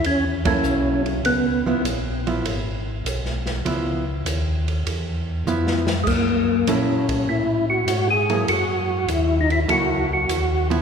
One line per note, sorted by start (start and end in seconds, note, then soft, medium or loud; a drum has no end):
0.03 0.62 E2 medium
0.03 0.25 C#4 medium
0.03 ride soft
0.45 1.21 F#3 medium
0.45 1.21 A#3 soft
0.45 1.03 C#4 medium
0.45 1.21 E4 medium
0.45 1.21 A4 medium
0.45 kick medium
0.45 ride medium
0.63 1.22 B1 medium
0.63 hi-hat pedal soft
1.06 ride soft
1.24 1.63 C#2 medium
1.24 1.81 B3 medium
1.24 ride soft
1.65 1.75 C#2 soft
1.65 1.83 F3 medium
1.65 1.84 B3 medium
1.65 1.84 E4 medium
1.84 2.43 A#1 medium
1.84 hi-hat pedal soft
1.84 ride medium
2.27 2.43 F3 soft
2.27 2.44 B3 medium
2.27 2.44 E4 medium
2.27 ride soft
2.44 3.03 G#1 medium
2.44 ride medium
3.04 3.63 B1 medium
3.04 hi-hat pedal medium
3.04 ride medium
3.25 snare soft
3.46 snare soft
3.46 ride soft
3.65 4.24 C#2 medium
3.65 4.03 F3 medium
3.65 4.03 B3 medium
3.65 4.04 E4 medium
3.65 ride soft
4.25 4.84 D#2 medium
4.25 hi-hat pedal medium
4.25 ride medium
4.68 ride soft
4.86 5.44 E2 medium
4.86 ride medium
5.46 6.04 F2 medium
5.46 5.84 F3 medium
5.46 5.84 B3 medium
5.46 5.85 E4 medium
5.46 hi-hat pedal soft
5.67 snare soft
5.87 snare medium
6.04 6.65 F#2 medium
6.04 6.07 G#3 soft
6.04 6.69 A#3 medium
6.04 kick medium
6.04 crash medium
6.67 7.25 A#2 medium
6.67 7.05 F#3 medium
6.67 7.05 A#3 medium
6.67 7.29 C#4 medium
6.67 7.05 E4 medium
6.67 7.05 A4 medium
6.67 hi-hat pedal soft
6.67 ride medium
7.09 kick soft
7.09 ride medium
7.27 7.85 A2 medium
7.27 7.65 E4 medium
7.70 8.08 F#4 medium
7.87 8.45 G#2 medium
7.87 hi-hat pedal medium
7.87 ride medium
8.07 8.09 G4 medium
8.07 8.46 G#4 medium
8.30 8.46 F#3 soft
8.30 8.46 A#3 medium
8.30 8.46 E4 soft
8.30 8.47 A4 medium
8.30 ride soft
8.48 9.06 F#2 medium
8.48 9.10 F#4 medium
8.48 ride medium
9.07 9.66 D#2 medium
9.07 9.38 E4 medium
9.07 hi-hat pedal soft
9.07 ride medium
9.41 9.50 D#4 medium
9.50 9.60 E4 medium
9.50 ride soft
9.68 10.26 C#2 medium
9.68 10.06 F#3 soft
9.68 10.06 A#3 soft
9.68 10.06 E4 medium
9.68 10.12 F#4 medium
9.68 10.06 A4 soft
9.68 ride soft
10.13 10.68 F#4 medium
10.28 10.82 D#2 medium
10.28 hi-hat pedal medium
10.28 ride medium
10.70 10.82 F3 medium
10.70 10.82 B3 medium
10.70 10.82 E4 medium
10.70 ride soft